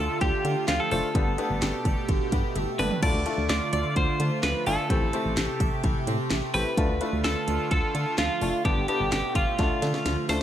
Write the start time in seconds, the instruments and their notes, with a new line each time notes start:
Already playing: analog synth pad D3 A3 F4, grand piano A3 D4 F4 A4, clean electric guitar A4, harpsichord D5
0.21 fm bass D2, harpsichord D3, clean electric guitar G4, kick, closed hi-hat
0.45 fm bass D3, harpsichord A3, closed hi-hat
0.68 fm bass D2, harpsichord F3, clean electric guitar F4, snare, clap, closed hi-hat
0.80 clean electric guitar A4
0.91 fm bass F1, grand piano A3 D4 F4 C5, clean electric guitar A4, harpsichord F5, open hi-hat
1.15 fm bass G1, analog synth pad B2 A3 G4, harpsichord D3, grand piano B3 D4 G4 A4, kick, closed hi-hat
1.27 fm bass G1
1.38 grand piano B3 D4 G4 A4, harpsichord B3, closed hi-hat
1.50 fm bass G1
1.62 fm bass G1, harpsichord G4, snare, clap, closed hi-hat
1.85 fm bass G1, harpsichord D5, kick, closed hi-hat
2.09 fm bass G1, harpsichord D3, kick, closed hi-hat
2.32 fm bass G2, harpsichord B3, kick, closed hi-hat
2.56 fm bass G1, harpsichord A3, closed hi-hat, high tom
2.79 fm bass G1, grand piano B3 D4 G4 A4, clean electric guitar B4, harpsichord A5, mid tom, open hi-hat
2.91 floor tom
3.02 fm bass D2, harpsichord D3, analog synth pad D3 F4, grand piano A3 D4 F4 A4, clean electric guitar D5, kick, crash
3.14 fm bass D2
3.26 grand piano A3 D4 F4 A4, harpsichord A3, closed hi-hat
3.38 fm bass D2
3.49 fm bass D2, harpsichord F4, clean electric guitar D5, snare, clap, closed hi-hat
3.73 fm bass D2, harpsichord D5, clean electric guitar D5, closed hi-hat
3.96 fm bass D2, harpsichord D3, clean electric guitar C5, kick, closed hi-hat
4.20 fm bass D3, harpsichord A3, closed hi-hat
4.43 fm bass D2, harpsichord F3, clean electric guitar B4, snare, clap, closed hi-hat
4.66 fm bass G1, grand piano A3 D4 F4 A4, clean electric guitar A4, harpsichord F5, open hi-hat
4.90 fm bass A1, analog synth pad C3 G4, harpsichord E3, grand piano A3 C4 E4 G4, kick, closed hi-hat
5.02 fm bass A1
5.13 grand piano A3 C4 E4 G4, harpsichord C4, closed hi-hat
5.25 fm bass A1
5.37 fm bass A1, harpsichord G4, snare, clap, closed hi-hat
5.60 fm bass A1, harpsichord E5, kick, closed hi-hat
5.84 fm bass A1, harpsichord E3, kick, closed hi-hat
6.07 fm bass A2, harpsichord C4, closed hi-hat
6.30 fm bass A1, harpsichord A3, snare, clap, closed hi-hat
6.54 fm bass A1, grand piano A3 C4 E4 G4, clean electric guitar B4, harpsichord A5, open hi-hat
6.77 fm bass D2, harpsichord D3, analog synth pad D3 F4, grand piano A3 D4 F4 A4, kick, closed hi-hat
6.89 fm bass D2
7.01 harpsichord A3, grand piano A3 D4 F4 B4, closed hi-hat
7.13 fm bass D2
7.24 fm bass D2, harpsichord F4, clean electric guitar A4, snare, clap, closed hi-hat
7.48 fm bass D2, harpsichord D5, closed hi-hat
7.71 fm bass D2, harpsichord D3, clean electric guitar A4, kick, closed hi-hat
7.95 fm bass D3, harpsichord A3, closed hi-hat
8.18 fm bass D2, harpsichord F3, clean electric guitar F4, snare, clap, closed hi-hat
8.41 fm bass F1, grand piano A3 D4 F4 A4, harpsichord F5, open hi-hat
8.65 fm bass G1, analog synth pad B2 A3 G4, harpsichord D3, grand piano B3 D4 G4 A4, clean electric guitar G4, kick, closed hi-hat
8.77 fm bass G1
8.88 harpsichord B3, grand piano B3 D4 G4 A4, clean electric guitar G4, closed hi-hat
9.00 fm bass G1
9.12 fm bass G1, harpsichord G4, clean electric guitar G4, snare, clap, closed hi-hat
9.35 fm bass G1, clean electric guitar F4, harpsichord D5, kick, closed hi-hat
9.59 fm bass D2, harpsichord D3, analog synth pad D3 F4, grand piano A3 D4 F4 A4, kick, snare, closed hi-hat
9.82 fm bass D3, harpsichord A3, snare, closed hi-hat
9.94 snare
10.06 fm bass D2, harpsichord F3, snare, closed hi-hat
10.29 fm bass D2, grand piano A3 D4 F4 A4, clean electric guitar C5, harpsichord F5, snare, open hi-hat